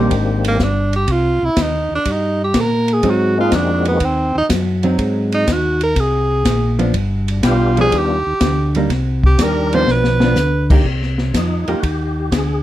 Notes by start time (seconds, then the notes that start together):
Already playing: D#3 G3 A#3 C4 D4 D#4 G4
0.11 G#1, kick, ride
0.44 A#3, ride
0.59 G1, kick, snare, hi-hat pedal
0.63 D4
0.93 G4, ride
1.08 C2, kick, ride
1.12 F4
1.42 C2 E4
1.57 D#2, kick, snare, hi-hat pedal, ride
1.61 D#4
1.91 D#2
1.95 D4
2.05 G2, kick, ride
2.11 D#4
2.44 G4
2.54 A#2, kick, snare, hi-hat pedal, ride
2.60 A#4
2.88 ride
2.93 G#4
3.03 G#2 F#3 C4 D#4, kick, ride
3.10 F#4
3.38 G#3 A#3 C4 D#4 F4 F#4
3.52 F2 D4, kick, snare, hi-hat pedal, ride
3.85 B3, ride
4.00 D#2, kick, ride
4.05 C4
4.35 D#2 D#4
4.49 F#2, kick, snare, hi-hat pedal, ride
4.83 F#3 C4 D#4, ride
4.98 G#2, kick, ride
5.32 D#4, ride
5.47 D#2, kick, snare, hi-hat pedal, ride
5.52 F#4
5.81 A#4, ride
5.96 C2, kick, ride
6.00 G#4
6.45 A#1, kick, snare, hi-hat pedal, ride
6.79 F3 B3 D4, ride
6.94 G1, kick, ride
7.28 D4, ride
7.43 B1 G3 B3 D4 F4 G4, kick, snare, hi-hat pedal, ride
7.77 F3 B3 D4 G#4, ride
7.92 D#2, kick, ride
7.97 G4
8.26 D#2
8.41 D2, kick, snare, hi-hat pedal, ride
8.75 G3 A#3 D#4, ride
8.90 C2, kick, snare, ride
9.24 G4, kick
9.38 D#2 G3 D4 A#4, kick, snare, hi-hat pedal, ride
9.42 A#4
9.73 F3 B3 D4 C5, ride
9.87 B1 B4, snare
10.04 snare
10.20 F3 B3 D4, snare
10.36 D2, snare, hi-hat pedal
10.70 A#3 D#4 G4, kick, crash
10.85 C2, kick
11.02 snare
11.18 snare
11.34 F2 D#4, kick, snare, hi-hat pedal, ride
11.68 F2 A#3 D#4 F4 G4, ride
11.80 D#2 F#4 G4, kick, ride
12.32 D2 G#4, kick, snare, hi-hat pedal, ride